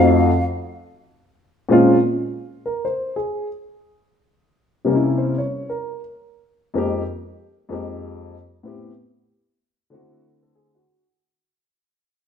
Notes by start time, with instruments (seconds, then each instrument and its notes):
Already playing: grand piano F2 A3 C4 D#4 F#4, flute F5
1.69 grand piano A#2 G#3 C4 C#4 F4
2.66 grand piano A#4
2.85 grand piano C5
3.16 grand piano G#4
4.85 grand piano C3 G3 A#3 C#4 D#4
4.95 grand piano E4
5.18 grand piano C5
5.38 grand piano C#5
5.69 grand piano A#4
6.74 grand piano F2 G#3 A#3 C4 D#4
6.78 grand piano G4
7.69 grand piano F2 G#3 A#3 C4 D#4 G4
8.63 grand piano A2 B3 C4 E4
8.68 grand piano G4
9.90 grand piano D3 A3 C4 E4 F#4
10.43 grand piano A4
10.55 grand piano G#4
10.75 grand piano F#4